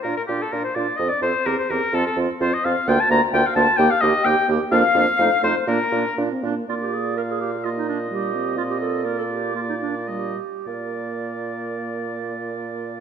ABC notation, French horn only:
X:1
M:2/4
L:1/16
Q:1/4=126
K:Bb
V:1 name="French horn"
D2 D2 D2 D2 | C2 C2 C2 C2 | C2 C2 C2 C2 | B,2 B,2 B,2 B,2 |
B,2 B,2 B,2 B,2 | B,2 B,2 A,2 A,2 | B,2 B,2 D C B,2 | B,8 |
B,4 G,2 C2- | C4 B,4 | B,4 G,2 z2 | B,8- |
B,8 |]